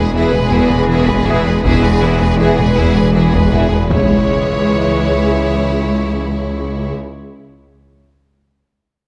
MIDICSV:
0, 0, Header, 1, 12, 480
1, 0, Start_track
1, 0, Key_signature, 4, "minor"
1, 0, Tempo, 754717
1, 1049, Time_signature, 6, 3, 24, 8
1, 5774, End_track
2, 0, Start_track
2, 0, Title_t, "Violin section"
2, 0, Program_c, 0, 48
2, 0, Note_on_c, 0, 71, 68
2, 86, Note_on_c, 0, 68, 76
2, 87, Note_off_c, 0, 71, 0
2, 199, Note_off_c, 0, 68, 0
2, 206, Note_on_c, 0, 71, 81
2, 315, Note_on_c, 0, 68, 89
2, 328, Note_off_c, 0, 71, 0
2, 442, Note_off_c, 0, 68, 0
2, 442, Note_on_c, 0, 71, 79
2, 561, Note_on_c, 0, 68, 81
2, 566, Note_off_c, 0, 71, 0
2, 677, Note_off_c, 0, 68, 0
2, 678, Note_on_c, 0, 71, 88
2, 799, Note_on_c, 0, 68, 77
2, 804, Note_off_c, 0, 71, 0
2, 924, Note_off_c, 0, 68, 0
2, 926, Note_on_c, 0, 71, 85
2, 1037, Note_on_c, 0, 68, 100
2, 1048, Note_off_c, 0, 71, 0
2, 1154, Note_off_c, 0, 68, 0
2, 1165, Note_on_c, 0, 71, 85
2, 1286, Note_on_c, 0, 68, 77
2, 1287, Note_off_c, 0, 71, 0
2, 1408, Note_off_c, 0, 68, 0
2, 1415, Note_on_c, 0, 71, 82
2, 1526, Note_on_c, 0, 68, 81
2, 1532, Note_off_c, 0, 71, 0
2, 1640, Note_off_c, 0, 68, 0
2, 1655, Note_on_c, 0, 71, 83
2, 1772, Note_off_c, 0, 71, 0
2, 1773, Note_on_c, 0, 68, 90
2, 1891, Note_off_c, 0, 68, 0
2, 1897, Note_on_c, 0, 71, 78
2, 2013, Note_off_c, 0, 71, 0
2, 2017, Note_on_c, 0, 68, 74
2, 2125, Note_off_c, 0, 68, 0
2, 2140, Note_on_c, 0, 71, 68
2, 2255, Note_off_c, 0, 71, 0
2, 2264, Note_on_c, 0, 68, 71
2, 2377, Note_off_c, 0, 68, 0
2, 2378, Note_on_c, 0, 71, 63
2, 2491, Note_on_c, 0, 73, 96
2, 2494, Note_off_c, 0, 71, 0
2, 4408, Note_off_c, 0, 73, 0
2, 5774, End_track
3, 0, Start_track
3, 0, Title_t, "Violin section"
3, 0, Program_c, 1, 48
3, 0, Note_on_c, 1, 68, 74
3, 94, Note_off_c, 1, 68, 0
3, 102, Note_on_c, 1, 64, 77
3, 208, Note_off_c, 1, 64, 0
3, 217, Note_on_c, 1, 68, 76
3, 333, Note_off_c, 1, 68, 0
3, 333, Note_on_c, 1, 64, 86
3, 448, Note_on_c, 1, 68, 80
3, 451, Note_off_c, 1, 64, 0
3, 569, Note_off_c, 1, 68, 0
3, 571, Note_on_c, 1, 64, 81
3, 682, Note_off_c, 1, 64, 0
3, 688, Note_on_c, 1, 68, 75
3, 807, Note_on_c, 1, 64, 84
3, 809, Note_off_c, 1, 68, 0
3, 928, Note_off_c, 1, 64, 0
3, 928, Note_on_c, 1, 68, 70
3, 1045, Note_on_c, 1, 64, 92
3, 1049, Note_off_c, 1, 68, 0
3, 1159, Note_off_c, 1, 64, 0
3, 1171, Note_on_c, 1, 68, 85
3, 1290, Note_off_c, 1, 68, 0
3, 1291, Note_on_c, 1, 64, 88
3, 1409, Note_on_c, 1, 68, 89
3, 1410, Note_off_c, 1, 64, 0
3, 1523, Note_on_c, 1, 64, 82
3, 1529, Note_off_c, 1, 68, 0
3, 1638, Note_off_c, 1, 64, 0
3, 1641, Note_on_c, 1, 68, 84
3, 1763, Note_on_c, 1, 64, 92
3, 1765, Note_off_c, 1, 68, 0
3, 1880, Note_on_c, 1, 68, 80
3, 1886, Note_off_c, 1, 64, 0
3, 1996, Note_on_c, 1, 64, 72
3, 2005, Note_off_c, 1, 68, 0
3, 2114, Note_off_c, 1, 64, 0
3, 2116, Note_on_c, 1, 68, 72
3, 2240, Note_on_c, 1, 64, 78
3, 2243, Note_off_c, 1, 68, 0
3, 2361, Note_on_c, 1, 68, 67
3, 2365, Note_off_c, 1, 64, 0
3, 2480, Note_on_c, 1, 64, 75
3, 2485, Note_off_c, 1, 68, 0
3, 4398, Note_off_c, 1, 64, 0
3, 5774, End_track
4, 0, Start_track
4, 0, Title_t, "Analog synth pad"
4, 0, Program_c, 2, 89
4, 0, Note_on_c, 2, 52, 78
4, 0, Note_on_c, 2, 56, 89
4, 0, Note_on_c, 2, 68, 79
4, 0, Note_on_c, 2, 71, 85
4, 2463, Note_off_c, 2, 52, 0
4, 2463, Note_off_c, 2, 56, 0
4, 2464, Note_off_c, 2, 68, 0
4, 2488, Note_off_c, 2, 71, 0
4, 2488, Note_on_c, 2, 56, 83
4, 2488, Note_on_c, 2, 73, 88
4, 2489, Note_on_c, 2, 68, 82
4, 2491, Note_on_c, 2, 52, 81
4, 4406, Note_off_c, 2, 56, 0
4, 4406, Note_off_c, 2, 68, 0
4, 4406, Note_off_c, 2, 73, 0
4, 4409, Note_off_c, 2, 52, 0
4, 5774, End_track
5, 0, Start_track
5, 0, Title_t, "French horn section"
5, 0, Program_c, 3, 60
5, 96, Note_on_c, 3, 52, 93
5, 98, Note_on_c, 3, 68, 82
5, 177, Note_off_c, 3, 52, 0
5, 179, Note_off_c, 3, 68, 0
5, 819, Note_on_c, 3, 68, 110
5, 820, Note_on_c, 3, 52, 106
5, 899, Note_off_c, 3, 68, 0
5, 900, Note_off_c, 3, 52, 0
5, 1532, Note_on_c, 3, 68, 97
5, 1534, Note_on_c, 3, 52, 93
5, 1615, Note_off_c, 3, 68, 0
5, 1616, Note_off_c, 3, 52, 0
5, 2248, Note_on_c, 3, 52, 89
5, 2249, Note_on_c, 3, 68, 89
5, 2332, Note_off_c, 3, 52, 0
5, 2333, Note_off_c, 3, 68, 0
5, 2486, Note_on_c, 3, 68, 80
5, 2488, Note_on_c, 3, 52, 85
5, 4404, Note_off_c, 3, 68, 0
5, 4406, Note_off_c, 3, 52, 0
5, 5774, End_track
6, 0, Start_track
6, 0, Title_t, "Viola section"
6, 0, Program_c, 4, 48
6, 0, Note_on_c, 4, 56, 75
6, 85, Note_on_c, 4, 59, 77
6, 88, Note_off_c, 4, 56, 0
6, 199, Note_off_c, 4, 59, 0
6, 208, Note_on_c, 4, 56, 78
6, 327, Note_on_c, 4, 59, 91
6, 329, Note_off_c, 4, 56, 0
6, 448, Note_off_c, 4, 59, 0
6, 449, Note_on_c, 4, 56, 80
6, 568, Note_on_c, 4, 59, 90
6, 570, Note_off_c, 4, 56, 0
6, 680, Note_off_c, 4, 59, 0
6, 688, Note_on_c, 4, 56, 80
6, 809, Note_off_c, 4, 56, 0
6, 810, Note_on_c, 4, 59, 86
6, 929, Note_on_c, 4, 56, 81
6, 930, Note_off_c, 4, 59, 0
6, 1049, Note_off_c, 4, 56, 0
6, 1053, Note_on_c, 4, 59, 93
6, 1163, Note_off_c, 4, 59, 0
6, 1178, Note_on_c, 4, 56, 83
6, 1293, Note_on_c, 4, 59, 85
6, 1294, Note_off_c, 4, 56, 0
6, 1411, Note_off_c, 4, 59, 0
6, 1413, Note_on_c, 4, 56, 80
6, 1531, Note_off_c, 4, 56, 0
6, 1533, Note_on_c, 4, 59, 79
6, 1643, Note_off_c, 4, 59, 0
6, 1651, Note_on_c, 4, 56, 85
6, 1770, Note_off_c, 4, 56, 0
6, 1773, Note_on_c, 4, 59, 85
6, 1891, Note_off_c, 4, 59, 0
6, 1893, Note_on_c, 4, 56, 75
6, 2012, Note_off_c, 4, 56, 0
6, 2012, Note_on_c, 4, 59, 72
6, 2122, Note_off_c, 4, 59, 0
6, 2131, Note_on_c, 4, 56, 72
6, 2244, Note_on_c, 4, 59, 76
6, 2250, Note_off_c, 4, 56, 0
6, 2359, Note_on_c, 4, 56, 70
6, 2367, Note_off_c, 4, 59, 0
6, 2474, Note_off_c, 4, 56, 0
6, 2482, Note_on_c, 4, 56, 74
6, 4400, Note_off_c, 4, 56, 0
6, 5774, End_track
7, 0, Start_track
7, 0, Title_t, "Analog synth bass"
7, 0, Program_c, 5, 38
7, 85, Note_on_c, 5, 40, 74
7, 158, Note_off_c, 5, 40, 0
7, 206, Note_on_c, 5, 40, 77
7, 279, Note_off_c, 5, 40, 0
7, 323, Note_on_c, 5, 40, 121
7, 397, Note_off_c, 5, 40, 0
7, 444, Note_on_c, 5, 40, 97
7, 518, Note_off_c, 5, 40, 0
7, 563, Note_on_c, 5, 52, 76
7, 637, Note_off_c, 5, 52, 0
7, 684, Note_on_c, 5, 40, 109
7, 758, Note_off_c, 5, 40, 0
7, 807, Note_on_c, 5, 40, 84
7, 880, Note_off_c, 5, 40, 0
7, 926, Note_on_c, 5, 40, 75
7, 999, Note_off_c, 5, 40, 0
7, 1046, Note_on_c, 5, 40, 101
7, 1119, Note_off_c, 5, 40, 0
7, 1168, Note_on_c, 5, 40, 75
7, 1240, Note_off_c, 5, 40, 0
7, 1288, Note_on_c, 5, 52, 73
7, 1361, Note_off_c, 5, 52, 0
7, 1407, Note_on_c, 5, 40, 123
7, 1480, Note_off_c, 5, 40, 0
7, 1530, Note_on_c, 5, 40, 75
7, 1602, Note_off_c, 5, 40, 0
7, 1651, Note_on_c, 5, 40, 83
7, 1723, Note_off_c, 5, 40, 0
7, 1770, Note_on_c, 5, 40, 108
7, 1842, Note_off_c, 5, 40, 0
7, 1890, Note_on_c, 5, 40, 86
7, 1962, Note_off_c, 5, 40, 0
7, 2010, Note_on_c, 5, 52, 88
7, 2082, Note_off_c, 5, 52, 0
7, 2129, Note_on_c, 5, 40, 107
7, 2201, Note_off_c, 5, 40, 0
7, 2246, Note_on_c, 5, 40, 72
7, 2319, Note_off_c, 5, 40, 0
7, 2367, Note_on_c, 5, 40, 73
7, 2440, Note_off_c, 5, 40, 0
7, 5774, End_track
8, 0, Start_track
8, 0, Title_t, "Cello section"
8, 0, Program_c, 6, 48
8, 0, Note_on_c, 6, 40, 104
8, 245, Note_off_c, 6, 40, 0
8, 330, Note_on_c, 6, 40, 117
8, 965, Note_off_c, 6, 40, 0
8, 1050, Note_on_c, 6, 40, 115
8, 1685, Note_off_c, 6, 40, 0
8, 1771, Note_on_c, 6, 40, 112
8, 2405, Note_off_c, 6, 40, 0
8, 2493, Note_on_c, 6, 37, 90
8, 4411, Note_off_c, 6, 37, 0
8, 5774, End_track
9, 0, Start_track
9, 0, Title_t, "Detuned saw bass"
9, 0, Program_c, 7, 39
9, 0, Note_on_c, 7, 28, 96
9, 2488, Note_off_c, 7, 28, 0
9, 2492, Note_on_c, 7, 37, 89
9, 4410, Note_off_c, 7, 37, 0
9, 5774, End_track
10, 0, Start_track
10, 0, Title_t, "Double bass section"
10, 0, Program_c, 8, 48
10, 0, Note_on_c, 8, 28, 107
10, 240, Note_off_c, 8, 28, 0
10, 325, Note_on_c, 8, 28, 116
10, 962, Note_off_c, 8, 28, 0
10, 1047, Note_on_c, 8, 28, 127
10, 1683, Note_off_c, 8, 28, 0
10, 1767, Note_on_c, 8, 28, 119
10, 2403, Note_off_c, 8, 28, 0
10, 2489, Note_on_c, 8, 37, 99
10, 4406, Note_off_c, 8, 37, 0
10, 5774, End_track
11, 0, Start_track
11, 0, Title_t, "Impact"
11, 0, Program_c, 10, 103
11, 2487, Note_on_c, 10, 60, 88
11, 4430, Note_off_c, 10, 60, 0
11, 5774, End_track
12, 0, Start_track
12, 0, Title_t, "Taiko and cinematic ensemble drums"
12, 205, Note_on_c, 9, 47, 60
12, 268, Note_off_c, 9, 47, 0
12, 445, Note_on_c, 9, 47, 61
12, 508, Note_off_c, 9, 47, 0
12, 683, Note_on_c, 9, 41, 95
12, 747, Note_off_c, 9, 41, 0
12, 806, Note_on_c, 9, 47, 72
12, 870, Note_off_c, 9, 47, 0
12, 1045, Note_on_c, 9, 41, 106
12, 1109, Note_off_c, 9, 41, 0
12, 1647, Note_on_c, 9, 47, 62
12, 1711, Note_off_c, 9, 47, 0
12, 1885, Note_on_c, 9, 47, 56
12, 1949, Note_off_c, 9, 47, 0
12, 2124, Note_on_c, 9, 41, 90
12, 2188, Note_off_c, 9, 41, 0
12, 2245, Note_on_c, 9, 47, 72
12, 2308, Note_off_c, 9, 47, 0
12, 2484, Note_on_c, 9, 43, 91
12, 2547, Note_off_c, 9, 43, 0
12, 5774, End_track
0, 0, End_of_file